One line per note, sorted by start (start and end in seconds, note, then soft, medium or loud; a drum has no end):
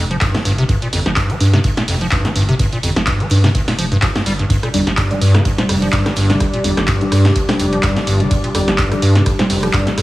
0.00 0.17 F1 medium
0.11 0.17 F3 medium
0.11 closed hi-hat soft
0.21 0.36 G2 loud
0.21 kick loud
0.21 snare loud
0.21 clap loud
0.21 closed hi-hat medium
0.34 0.40 G3 medium
0.34 snare medium
0.34 closed hi-hat soft
0.45 0.65 G1 medium
0.45 0.52 G2 loud
0.45 closed hi-hat medium
0.45 open hi-hat loud
0.58 0.64 C3 medium
0.58 closed hi-hat soft
0.69 0.76 G2 medium
0.69 kick loud
0.69 closed hi-hat medium
0.82 0.88 A#2 medium
0.82 closed hi-hat soft
0.93 1.03 G1 loud
0.93 1.00 F2 medium
0.93 snare soft
0.93 closed hi-hat medium
0.93 open hi-hat loud
1.06 1.24 G1 medium
1.06 1.12 F3 medium
1.06 snare medium
1.06 closed hi-hat soft
1.16 1.31 G2 loud
1.16 kick loud
1.16 snare loud
1.16 clap loud
1.16 closed hi-hat medium
1.30 1.36 G3 loud
1.30 closed hi-hat soft
1.40 1.60 G2 loud
1.40 1.48 G2 loud
1.40 closed hi-hat medium
1.40 open hi-hat loud
1.53 1.59 C3 loud
1.53 snare medium
1.53 closed hi-hat soft
1.64 1.71 G2 medium
1.64 kick loud
1.64 closed hi-hat medium
1.77 1.83 A#2 medium
1.77 snare medium
1.77 closed hi-hat soft
1.88 2.08 F1 medium
1.88 1.95 F2 medium
1.88 snare medium
1.88 open hi-hat medium
1.88 open hi-hat loud
2.01 2.07 F3 medium
2.01 closed hi-hat soft
2.11 2.26 G2 loud
2.11 kick loud
2.11 snare loud
2.11 clap loud
2.11 closed hi-hat medium
2.25 2.31 G3 loud
2.25 snare medium
2.25 closed hi-hat soft
2.36 2.55 G1 medium
2.36 2.43 G2 loud
2.36 closed hi-hat medium
2.36 open hi-hat loud
2.49 2.55 C3 loud
2.49 closed hi-hat soft
2.59 2.67 G2 medium
2.59 kick loud
2.59 closed hi-hat medium
2.73 2.78 A#2 medium
2.73 closed hi-hat soft
2.83 2.94 G1 loud
2.83 2.90 F2 medium
2.83 closed hi-hat medium
2.83 open hi-hat loud
2.96 3.15 G1 medium
2.96 3.02 F3 medium
2.96 snare medium
2.96 closed hi-hat soft
3.07 3.22 G2 loud
3.07 kick loud
3.07 snare loud
3.07 clap loud
3.07 closed hi-hat medium
3.20 3.26 G3 loud
3.20 closed hi-hat soft
3.30 3.50 G2 loud
3.30 3.38 G2 loud
3.30 snare soft
3.30 closed hi-hat medium
3.30 open hi-hat loud
3.44 3.50 C3 loud
3.44 snare medium
3.44 snare soft
3.44 closed hi-hat soft
3.55 3.62 G2 medium
3.55 kick loud
3.55 closed hi-hat medium
3.68 3.74 A#2 medium
3.68 snare medium
3.68 open hi-hat medium
3.78 3.98 F1 medium
3.78 3.86 F3 medium
3.78 closed hi-hat medium
3.78 open hi-hat loud
3.92 3.98 G2 loud
3.92 closed hi-hat soft
4.02 4.07 F3 medium
4.02 kick loud
4.02 snare loud
4.02 clap loud
4.02 closed hi-hat loud
4.02 closed hi-hat medium
4.15 4.21 G2 medium
4.15 snare medium
4.15 closed hi-hat soft
4.26 4.46 G1 medium
4.26 4.33 G3 medium
4.26 closed hi-hat medium
4.26 open hi-hat loud
4.39 4.45 G2 medium
4.39 closed hi-hat soft
4.50 4.57 G2 medium
4.50 10.02 G3 medium
4.50 10.02 D4 medium
4.50 10.02 D5 medium
4.50 kick loud
4.50 closed hi-hat medium
4.50 closed hi-hat loud
4.63 4.69 A#2 medium
4.63 cross-stick medium
4.63 closed hi-hat soft
4.74 4.84 G1 loud
4.74 4.81 F2 medium
4.74 4.89 G3 medium
4.74 4.89 D4 medium
4.74 4.89 D5 loud
4.74 snare soft
4.74 closed hi-hat medium
4.74 open hi-hat loud
4.87 5.05 G1 medium
4.87 4.93 F3 medium
4.87 snare medium
4.87 closed hi-hat soft
4.97 5.12 G2 loud
4.97 kick loud
4.97 cross-stick medium
4.97 snare loud
4.97 clap loud
4.97 closed hi-hat medium
5.11 5.17 G3 loud
5.11 5.33 G3 medium
5.11 5.33 D4 medium
5.11 5.33 D5 loud
5.11 closed hi-hat soft
5.21 5.41 G2 loud
5.21 5.36 G2 loud
5.21 closed hi-hat medium
5.21 open hi-hat loud
5.34 5.43 D3 medium
5.34 cross-stick medium
5.34 snare medium
5.34 closed hi-hat soft
5.45 5.52 G2 medium
5.45 kick loud
5.45 closed hi-hat medium
5.58 5.64 A#2 medium
5.58 5.81 G3 medium
5.58 5.81 D4 medium
5.58 5.81 C5 medium
5.58 snare medium
5.58 closed hi-hat soft
5.69 5.88 F1 medium
5.69 5.76 F2 medium
5.69 cross-stick medium
5.69 snare medium
5.69 open hi-hat medium
5.69 open hi-hat loud
5.82 5.88 F3 medium
5.82 closed hi-hat soft
5.93 6.07 G2 loud
5.93 6.08 G3 loud
5.93 6.08 D4 medium
5.93 6.08 D5 loud
5.93 kick loud
5.93 snare loud
5.93 clap loud
5.93 closed hi-hat medium
6.06 6.12 G3 loud
6.06 cross-stick medium
6.06 snare medium
6.06 closed hi-hat soft
6.16 6.36 G1 medium
6.16 6.31 G2 loud
6.16 closed hi-hat medium
6.16 open hi-hat loud
6.29 6.39 D3 medium
6.29 6.43 G3 loud
6.29 6.43 D4 medium
6.29 6.43 D5 loud
6.29 snare soft
6.29 snare medium
6.29 closed hi-hat soft
6.40 6.48 G2 medium
6.40 kick loud
6.40 cross-stick medium
6.40 closed hi-hat medium
6.54 6.59 A#2 medium
6.54 closed hi-hat soft
6.64 6.75 G1 loud
6.64 6.71 F2 medium
6.64 6.79 G3 medium
6.64 6.79 D4 medium
6.64 6.79 D5 loud
6.64 closed hi-hat medium
6.64 open hi-hat loud
6.77 6.96 G1 medium
6.77 6.83 F3 medium
6.77 cross-stick medium
6.77 snare medium
6.77 closed hi-hat soft
6.88 7.03 G2 loud
6.88 kick loud
6.88 snare loud
6.88 clap loud
6.88 closed hi-hat medium
7.01 7.24 G3 medium
7.01 7.07 G3 loud
7.01 7.24 D4 medium
7.01 7.24 D5 loud
7.01 closed hi-hat soft
7.12 7.31 G2 loud
7.12 7.26 G2 loud
7.12 cross-stick medium
7.12 snare soft
7.12 closed hi-hat medium
7.12 open hi-hat loud
7.25 7.34 D3 medium
7.25 snare soft
7.25 snare medium
7.25 closed hi-hat soft
7.36 7.43 G2 medium
7.36 kick loud
7.36 closed hi-hat medium
7.49 7.55 A#2 medium
7.49 7.71 G3 medium
7.49 7.71 D4 medium
7.49 7.71 C5 medium
7.49 cross-stick medium
7.49 snare medium
7.49 open hi-hat medium
7.59 7.79 F1 medium
7.59 7.67 F2 medium
7.59 closed hi-hat medium
7.59 open hi-hat loud
7.73 7.78 F3 medium
7.73 closed hi-hat soft
7.83 7.98 G2 loud
7.83 7.98 G3 loud
7.83 7.98 D4 medium
7.83 7.98 D5 loud
7.83 kick loud
7.83 cross-stick medium
7.83 snare loud
7.83 clap loud
7.83 closed hi-hat medium
7.96 8.02 G3 loud
7.96 snare medium
7.96 closed hi-hat soft
8.07 8.27 G1 medium
8.07 8.22 G2 loud
8.07 closed hi-hat medium
8.07 open hi-hat loud
8.20 8.29 D3 medium
8.20 8.33 G3 loud
8.20 8.33 D4 medium
8.20 8.33 D5 loud
8.20 closed hi-hat soft
8.31 8.38 G2 medium
8.31 kick loud
8.31 closed hi-hat medium
8.44 8.50 A#2 medium
8.44 closed hi-hat soft
8.55 8.65 G1 loud
8.55 8.62 F2 medium
8.55 8.70 G3 medium
8.55 8.70 D4 medium
8.55 8.70 D5 loud
8.55 cross-stick medium
8.55 snare soft
8.55 closed hi-hat medium
8.55 open hi-hat loud
8.68 8.86 G1 medium
8.68 8.74 F3 medium
8.68 snare medium
8.68 closed hi-hat soft
8.78 8.93 G2 loud
8.78 kick loud
8.78 snare loud
8.78 clap loud
8.78 closed hi-hat medium
8.91 9.14 G3 medium
8.91 8.98 G3 loud
8.91 9.14 D4 medium
8.91 9.14 D5 loud
8.91 cross-stick medium
8.91 closed hi-hat soft
9.02 9.22 G2 medium
9.02 9.17 G2 loud
9.02 closed hi-hat medium
9.02 open hi-hat loud
9.15 9.24 D3 medium
9.15 snare medium
9.15 closed hi-hat soft
9.26 9.33 G2 medium
9.26 kick loud
9.26 cross-stick medium
9.26 closed hi-hat medium
9.39 9.45 A#2 medium
9.39 9.62 G3 medium
9.39 9.62 D4 medium
9.39 9.62 C5 medium
9.39 snare medium
9.39 closed hi-hat soft
9.50 9.69 F1 medium
9.50 9.57 F2 medium
9.50 snare medium
9.50 open hi-hat medium
9.50 open hi-hat loud
9.63 9.69 F3 medium
9.63 cross-stick medium
9.63 closed hi-hat soft
9.73 9.88 G2 loud
9.73 9.89 G3 medium
9.73 9.89 D4 medium
9.73 9.89 D5 loud
9.73 kick loud
9.73 snare loud
9.73 clap loud
9.73 closed hi-hat medium
9.87 9.93 G3 loud
9.87 snare medium
9.87 closed hi-hat soft
9.97 10.02 G1 medium
9.97 10.02 G2 loud
9.97 cross-stick medium
9.97 closed hi-hat medium
9.97 open hi-hat loud